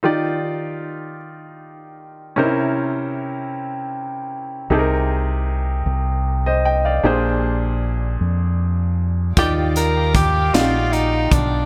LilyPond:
<<
  \new Staff \with { instrumentName = "String section" } { \time 6/8 \key ees \major \tempo 4. = 51 r2. | r2. | r2. | r2. |
<f'' g'' d'''>2. | }
  \new Staff \with { instrumentName = "Grand piano" } { \time 6/8 \key ees \major << { r2. | r2. | r2 r16 <c'' ees''>16 <ees'' g''>16 <d'' f''>16~ | <d'' f''>16 r2 r8. |
r2. | } \\ { <ees' f' g' d''>2. | <des' ees' e' bes' c''>2. | <ees' g' aes' a' bes'>2. | <d' g' aes' c''>2. |
<ees' f' g' d''>4 r8 <ees' f' ges' g' d''>4 r8 | } >> }
  \new Staff \with { instrumentName = "Grand piano" } { \clef bass \time 6/8 \key ees \major ees4. r4. | c4. r4. | c4. r4. | bes,4. r4. |
ees4. r4. | }
  \new Staff \with { instrumentName = "Tenor saxophone" } { \time 6/8 \key ees \major r2. | r2. | r2. | r2. |
g'8 bes'8 g'8 f'8 ees'8 d'8 | }
  \new Staff \with { instrumentName = "Fingered electric bass" } { \clef bass \time 6/8 \key ees \major r2. | r2. | c,4. c,4. | bes,,4. f,4. |
ees,4. bes,,4 ces,8 | }
  \new DrumStaff \with { instrumentName = "Drums" } \drummode { \time 6/8 r4. r4. | r4. r4. | r4. r4. | r4. r4. |
<hh bd>8 hh8 <hh bd>8 <hh sn>8 hh8 <hh bd>8 | }
>>